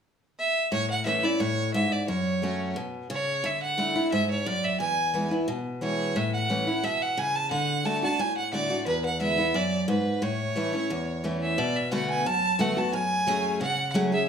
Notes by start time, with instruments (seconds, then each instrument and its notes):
0.39 fiddle E5
0.72 steel-string acoustic guitar A2, fiddle C#5
0.90 fiddle F#5
1.05 steel-string acoustic guitar E3 A3 C#4 E4, fiddle E5
1.23 steel-string acoustic guitar C#4 E4, fiddle D5
1.40 steel-string acoustic guitar A2, fiddle C#5
1.74 steel-string acoustic guitar G#2, fiddle E5
1.92 fiddle D5
2.08 steel-string acoustic guitar F#2, fiddle C#5
2.42 steel-string acoustic guitar F#3 A3 C#4 F#4
2.76 steel-string acoustic guitar B2
3.10 steel-string acoustic guitar C#3, fiddle C#5
3.44 steel-string acoustic guitar D3, fiddle E5
3.63 fiddle F#5
3.78 steel-string acoustic guitar D3 A3 D4 E4
3.96 steel-string acoustic guitar D4 E4
4.12 steel-string acoustic guitar G#2, fiddle E5
4.30 fiddle C#5
4.46 steel-string acoustic guitar F#2, fiddle D5
4.64 fiddle E5
4.80 steel-string acoustic guitar E2, fiddle G#5
5.14 steel-string acoustic guitar E3 G#3 B3 E4
5.31 steel-string acoustic guitar B3 E4
5.48 steel-string acoustic guitar B2
5.81 steel-string acoustic guitar E3 G#3 B3 E4, fiddle C#5
6.16 steel-string acoustic guitar A2, fiddle E5
6.33 fiddle F#5
6.49 steel-string acoustic guitar E3 A3 C#4 E4
6.67 steel-string acoustic guitar C#4 E4
6.84 steel-string acoustic guitar B2, fiddle E5
7.02 fiddle F#5
7.17 steel-string acoustic guitar C#3, fiddle G#5
7.36 fiddle A5
7.51 steel-string acoustic guitar D3, fiddle F#5
7.85 steel-string acoustic guitar D3 A3 D4 F#4, fiddle A5
8.03 steel-string acoustic guitar D4 F#4, fiddle A5
8.19 steel-string acoustic guitar A2, fiddle G#5
8.37 fiddle F#5
8.53 steel-string acoustic guitar D3 A3 D4 F#4, fiddle D5
8.70 steel-string acoustic guitar D4 F#4
8.86 steel-string acoustic guitar E2, fiddle B4
9.05 fiddle F#5
9.20 steel-string acoustic guitar D3 G#3 B3 E4, fiddle E5
9.38 steel-string acoustic guitar B3 E4
9.54 steel-string acoustic guitar F#2, fiddle D5
9.88 steel-string acoustic guitar G#2, fiddle B4
10.22 steel-string acoustic guitar A2, fiddle C#5
10.56 steel-string acoustic guitar E3 A3 C#4 E4
10.73 steel-string acoustic guitar C#4 E4
10.90 steel-string acoustic guitar E2
11.24 steel-string acoustic guitar E3 A3 C#4 E4
11.42 fiddle E5
11.58 steel-string acoustic guitar B2, fiddle D5
11.76 fiddle E5
11.92 steel-string acoustic guitar D3 A3 B3 F#4, fiddle F#5
12.10 fiddle G#5
12.26 steel-string acoustic guitar F#2, fiddle A5
12.59 steel-string acoustic guitar D3 A3 B3 F#4, fiddle F#5
12.77 steel-string acoustic guitar B3 F#4, fiddle A5
12.93 steel-string acoustic guitar F#2, fiddle G#5
13.27 steel-string acoustic guitar F#3 A3 C#4 G#4
13.61 steel-string acoustic guitar C#3, fiddle F#5
13.94 steel-string acoustic guitar F#3 A3 C#4 G#4
14.12 steel-string acoustic guitar C#4 G#4, fiddle E5